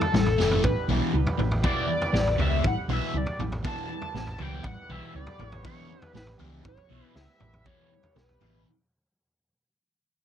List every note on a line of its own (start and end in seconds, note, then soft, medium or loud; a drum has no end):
0.00 0.62 A4 loud
0.00 floor tom medium
0.13 0.35 A1 medium
0.13 muted distorted electric guitar stroke soft
0.13 snare medium
0.13 mid tom medium
0.26 floor tom medium
0.38 0.60 F#1 medium
0.38 0.64 A2 medium
0.38 0.63 E3 medium
0.38 0.63 A3 medium
0.38 snare soft
0.51 floor tom medium
0.62 0.74 A1 medium
0.62 8.61 E3 medium
0.62 8.61 G3 medium
0.62 8.61 B3 medium
0.62 8.61 G4 medium
0.62 4.59 B4 medium
0.62 0.87 B4 medium
0.62 muted distorted electric guitar stroke soft
0.62 kick loud
0.62 floor tom medium
0.88 0.99 B1 medium
0.88 1.12 E2 medium
0.88 1.12 B2 medium
0.88 1.12 E3 medium
0.88 mid tom medium
1.13 1.24 C#2 medium
1.13 muted distorted electric guitar stroke soft
1.27 floor tom medium
1.38 1.60 A1 medium
1.38 muted distorted electric guitar stroke medium
1.38 floor tom medium
1.51 floor tom medium
1.63 1.88 E2 medium
1.63 1.87 B2 medium
1.63 1.86 E3 medium
1.63 2.36 D5 medium
1.63 kick loud
1.63 floor tom medium
1.88 muted distorted electric guitar stroke soft
2.02 floor tom medium
2.13 2.35 A1 medium
2.13 muted distorted electric guitar stroke soft
2.13 snare medium
2.27 floor tom medium
2.38 2.60 C#2 medium
2.38 2.62 E2 medium
2.38 2.63 B2 medium
2.38 2.63 E3 medium
2.38 2.63 E5 loud
2.38 floor tom medium
2.63 2.75 A1 medium
2.63 2.78 F#5 loud
2.63 muted distorted electric guitar stroke soft
2.63 kick loud
2.63 floor tom medium
2.88 2.99 B1 medium
2.88 3.13 E2 medium
2.88 3.13 B2 medium
2.88 3.14 E3 medium
2.88 mid tom medium
2.93 3.19 E5 loud
3.14 3.24 C#2 medium
3.14 3.41 D5 medium
3.14 muted distorted electric guitar stroke soft
3.26 floor tom medium
3.39 3.60 A1 medium
3.39 muted distorted electric guitar stroke soft
3.39 floor tom medium
3.52 floor tom medium
3.63 3.89 E2 medium
3.63 3.89 B2 medium
3.63 3.89 E3 medium
3.63 4.44 A5 loud
3.63 kick loud
3.63 floor tom medium
3.90 muted distorted electric guitar stroke soft
4.02 floor tom medium
4.14 4.35 A1 medium
4.14 muted distorted electric guitar stroke soft
4.14 snare medium
4.27 floor tom medium
4.38 4.61 C#2 medium
4.38 4.63 E2 medium
4.38 4.64 B2 medium
4.38 4.64 E3 medium
4.38 4.65 G5 loud
4.38 floor tom medium
4.64 4.75 A1 loud
4.64 8.61 B4 medium
4.64 4.93 F#5 medium
4.64 muted distorted electric guitar stroke soft
4.64 kick medium
4.64 floor tom medium
4.89 5.00 B1 medium
4.89 5.13 E2 medium
4.89 5.13 B2 medium
4.89 5.14 E3 medium
4.89 5.15 E5 medium
4.89 mid tom medium
5.14 5.25 C#2 medium
5.14 5.50 D5 medium
5.14 muted distorted electric guitar stroke soft
5.27 floor tom medium
5.39 5.60 A1 medium
5.39 muted distorted electric guitar stroke soft
5.39 floor tom medium
5.50 5.62 C#5 medium
5.50 floor tom medium
5.63 5.89 E2 medium
5.63 5.89 B2 medium
5.63 5.88 E3 medium
5.63 6.12 C#5 medium
5.63 kick loud
5.63 floor tom medium
5.89 muted distorted electric guitar stroke soft
6.02 floor tom medium
6.14 6.36 A1 medium
6.14 6.28 B4 medium
6.14 muted distorted electric guitar stroke soft
6.14 snare medium
6.27 floor tom medium
6.39 6.61 C#2 medium
6.39 6.63 E2 medium
6.39 6.63 B2 medium
6.39 6.63 E3 medium
6.39 floor tom medium
6.64 6.76 A1 loud
6.64 muted distorted electric guitar stroke soft
6.64 kick loud
6.64 floor tom medium
6.68 7.13 C#5 medium
6.77 floor tom medium
6.90 7.01 B1 medium
6.90 7.14 E2 medium
6.90 7.14 B2 medium
6.90 7.15 E3 medium
7.15 7.26 C#2 medium
7.15 7.68 E5 loud
7.15 muted distorted electric guitar stroke soft
7.15 snare medium
7.40 7.62 A1 medium
7.40 muted distorted electric guitar stroke soft
7.40 floor tom medium
7.53 floor tom medium
7.65 7.90 E2 medium
7.65 7.90 B2 medium
7.65 7.90 E3 medium
7.65 8.15 C#5 loud
7.65 kick medium
7.65 floor tom medium
7.91 muted distorted electric guitar stroke soft
8.03 floor tom medium
8.16 8.39 B1 medium
8.16 8.62 B4 medium
8.16 muted distorted electric guitar stroke soft
8.16 snare medium
8.16 mid tom medium
8.29 floor tom medium
8.41 8.64 A1 medium
8.41 8.66 E2 medium
8.41 8.66 B2 medium
8.41 8.66 E3 medium
8.41 floor tom medium